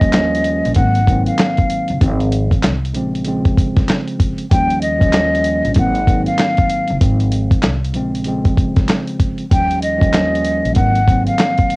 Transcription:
Already playing: D#2 D#5
0.00 F3 G3 A#3 C#4, kick, closed hi-hat
0.13 D#2 F3 G3 A#3, snare, clap, closed hi-hat
0.17 C#4
0.35 closed hi-hat
0.44 closed hi-hat
0.65 A#1, closed hi-hat
0.75 G#1 G#2 D#3 F#3 F#5, kick, closed hi-hat
0.79 A#3 C4
0.95 closed hi-hat
1.07 G#2 D#3 F#3 A#3 C4, kick, closed hi-hat
1.26 F5, closed hi-hat
1.38 snare, clap, closed hi-hat
1.57 kick, closed hi-hat
1.70 closed hi-hat
1.88 F#1, closed hi-hat
2.00 G#1 G#2 D#3 F3 G#3 C4, kick, closed hi-hat
2.20 closed hi-hat
2.32 closed hi-hat
2.51 kick, closed hi-hat
2.63 C2, snare, clap, closed hi-hat
2.85 closed hi-hat
2.94 A#1 C#3 F3 G#3 C4, closed hi-hat
3.15 closed hi-hat
3.25 C#3 F3 G#3 C4, closed hi-hat
3.45 kick, closed hi-hat
3.57 kick, closed hi-hat
3.76 kick, snare, closed hi-hat
3.88 snare, clap, closed hi-hat
4.08 closed hi-hat
4.20 kick, closed hi-hat
4.38 closed hi-hat
4.51 D#2 F3 G3 A#3 C#4 G5, kick, closed hi-hat
4.70 closed hi-hat
4.82 D#5, closed hi-hat
4.97 D#2 F3 G3 A#3 C#4, kick
5.02 closed hi-hat
5.13 D#2 F3 G3 A#3, snare, clap, closed hi-hat
5.17 C#4
5.35 closed hi-hat
5.44 closed hi-hat
5.65 A#1, closed hi-hat
5.74 G#1 G#2 D#3 F#3 A#3 F#5, kick, closed hi-hat
5.79 C4
5.95 closed hi-hat
6.07 G#2 D#3 F#3 A#3 C4, kick, closed hi-hat
6.26 F5, closed hi-hat
6.38 snare, clap, closed hi-hat
6.57 kick, closed hi-hat
6.70 closed hi-hat
6.88 F#1, closed hi-hat
7.00 G#1 G#2 D#3 F3 G#3 C4, kick, closed hi-hat
7.20 closed hi-hat
7.32 closed hi-hat
7.51 kick, closed hi-hat
7.63 C2, snare, clap, closed hi-hat
7.85 closed hi-hat
7.93 A#1 C#3 F3 G#3 C4, closed hi-hat
8.15 closed hi-hat
8.24 C#3 F3 G#3 C4, closed hi-hat
8.45 kick, closed hi-hat
8.57 kick, closed hi-hat
8.76 kick, snare, closed hi-hat
8.88 snare, clap, closed hi-hat
9.08 closed hi-hat
9.20 kick, closed hi-hat
9.38 closed hi-hat
9.51 D#2 F3 G3 A#3 C#4 G5, kick, closed hi-hat
9.71 closed hi-hat
9.82 D#5, closed hi-hat
9.97 D#2 F3 G3 A#3 C#4
10.01 kick, closed hi-hat
10.13 D#2 F3 G3 A#3 C#4, snare, clap, closed hi-hat
10.35 closed hi-hat
10.45 closed hi-hat
10.65 A#1, closed hi-hat
10.75 G#1 G#2 D#3 F#3 A#3 C4 F#5, kick, closed hi-hat
10.95 closed hi-hat
11.08 G#2 D#3 F#3 A#3 C4, kick, closed hi-hat
11.27 F5, closed hi-hat
11.38 snare, clap, closed hi-hat
11.58 kick, closed hi-hat
11.70 closed hi-hat

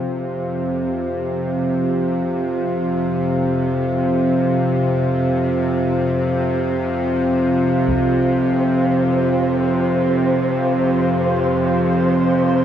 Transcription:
Already playing: F2 C3 C4 F4 C5 F5
7.88 C5, taiko

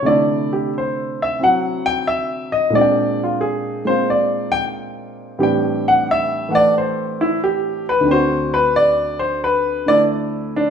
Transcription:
0.02 C3 A3 D5
0.07 D3 E4
0.53 G4
0.78 C5
1.22 E5
1.40 F#3 C4 E4
1.44 F#5
1.86 G5
2.07 E5
2.52 D#5
2.70 A#2 G#3
2.75 C4 D4 D5
2.81 G5
3.23 F4
3.41 G#4
3.85 G#3 A#3 C4 F4 C5
4.10 D5
4.52 G5
5.39 A2 E3 G3 C4 D4 G4
5.43 G5
5.88 F#5
6.11 E5
6.49 E3 A3 F#5
6.55 D5
6.78 C5
7.21 E4
7.44 G4
7.89 B4
8.01 D2 D3
8.08 C4 F#4 C5
8.54 B4
8.76 D5
9.19 C5
9.44 B4
9.86 D3 A3 E4 D5
10.56 D4

